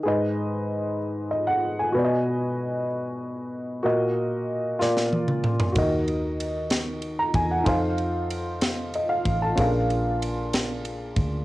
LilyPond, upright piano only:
<<
  \new Staff \with { instrumentName = "Upright piano" } { \time 6/8 \key ees \minor \tempo 4. = 63 << { r2 ees''16 ges''8 aes''16~ | aes''16 r2 r8. | r2. | r2 r16 bes''16 aes''16 ges''16~ |
ges''16 r4. r16 ees''16 f''8 a''16~ | a''16 r2 r8. | } \\ { <aes' ces'' ees''>2. | <fis' b' d'' dis''>2. | <ges' bes' ees''>4. <f' bes' d''>4. | <ges' bes' ees''>2. |
<ees' f' a' c'' f''>2. | <des' d' f' aes' bes' f''>2. | } >> }
  \new Staff \with { instrumentName = "Upright piano" } { \clef bass \time 6/8 \key ees \minor aes,4. r4. | b,4. r4. | bes,4. bes,4. | ees4. r4. |
r2. | bes,4. r4. | }
>>